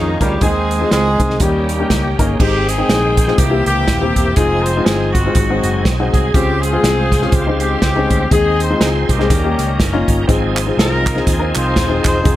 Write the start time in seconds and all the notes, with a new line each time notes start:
Already playing: F2 D#3 G#3 A#3 C#4 D#4 F4
0.20 D2 G3 C#4 D#4 F4 G4 A#4, kick, closed hi-hat
0.36 G3
0.41 D#2 D#3 G#3 C4 D#4 G#4, kick, closed hi-hat
0.71 closed hi-hat
0.81 G#3 C4 D#4 F4
0.91 C#2 G#3 C4 D#4 G#4, snare, closed hi-hat
1.19 C2 G#3 C4 D#4 G#4, kick, closed hi-hat
1.30 snare
1.40 D#2 D#3 G3 A#3 C#4 D#4 G4, kick, closed hi-hat
1.69 closed hi-hat
1.79 A#3 C#4 D#4 G4
1.90 C#2, kick, snare, closed hi-hat
2.19 G1 A#3 C#4 D#4 G#4 A#4, kick, closed hi-hat
2.39 G#1 G#2 D#3 G#3 C4 D#4 G4 G5, kick, crash
2.68 C4 D#4 G#4, closed hi-hat
2.78 G#3 C4 D#4 G5
2.89 A#1, snare, closed hi-hat
3.17 kick, closed hi-hat
3.27 G#3 C4 D#4 F4, snare
3.37 C2 C3 D#3 A#3 C4 E4 G4, kick, closed hi-hat
3.45 E3
3.50 A#3 C4 E4 G4
3.66 C#2 A#3 E4 G4, closed hi-hat
3.88 kick, snare, closed hi-hat
4.01 A#3 C4 E4 G4
4.16 E1, kick, closed hi-hat
4.36 F1 F3 G#3 C4 D#4 F4 G4 G#4, kick, closed hi-hat
4.45 G#4
4.63 C5, closed hi-hat
4.77 G#3 C4 D#4 F4
4.85 G1 G#4, snare, closed hi-hat
5.13 C4 D#4 F#4, kick, closed hi-hat
5.25 G#3 C4 D#4 F4
5.35 G#1 G#2 F#3 C4 D#4 F#4, kick, closed hi-hat
5.42 G#4
5.50 G#3 C4 D#4 F#4
5.63 F#1, closed hi-hat
5.85 B1, kick, snare, closed hi-hat
6.00 G#3 C4 D#4 F#4
6.12 C2 G#4, kick, closed hi-hat
6.34 C#2 C#3 G#3 C4 C#4 F4 G4 C5, kick, closed hi-hat
6.62 C4 F4 G#4, closed hi-hat
6.73 G#3 C4 F4
6.83 C2, snare, closed hi-hat
7.12 kick, snare, closed hi-hat
7.22 G#3 C4 C#4 F4, snare
7.32 C#2 C4 G4, kick, closed hi-hat
7.47 C#3 G#3 C4 D#4
7.60 C4 G4, closed hi-hat
7.82 C#2, kick, snare, closed hi-hat
7.95 G#3 C4 C#4 D#4
8.10 D2, kick, closed hi-hat
8.31 D#2 D#3 G#3 C4 D#4 G#4 C5, kick, closed hi-hat
8.60 C5, closed hi-hat
8.70 G#3 C4 D#4 F4
8.80 C#2 G#4, snare, closed hi-hat
9.09 C2 A#3 C#4 G4, kick, closed hi-hat
9.19 G#3 C4 D#4 G#4, snare
9.29 D#2 D#3 G3 C#4 D#4 A#4, kick, closed hi-hat
9.43 A#3 C#4 D#4 G4
9.58 C#2, closed hi-hat
9.80 F#1, kick, snare, closed hi-hat
9.93 A#3 C#4 D#4 F4
10.08 G1, kick, closed hi-hat
10.27 G#1 G#2 F3 C4 D#4 F4 G4 G#4, kick, closed hi-hat
10.33 G#4
10.57 clap, closed hi-hat
10.66 C4 D#4 F4 G#4
10.77 C2 D#4 F4 A#4, snare, closed hi-hat
11.06 kick, clap, closed hi-hat
11.15 C4 D#4 F4 G#4, snare
11.27 D#2 C4 F4 G#4, kick, closed hi-hat
11.39 C4 D#4 F4 A#4
11.55 C2 D#4 F4 C5, clap, closed hi-hat
11.76 D#1, kick, snare, closed hi-hat
11.88 C4 D#4 F4 G#4
12.05 E1 D#4 G#4 C5, kick, clap, closed hi-hat
12.23 F1 F3 C4 D#4 F4 G#4, kick, closed hi-hat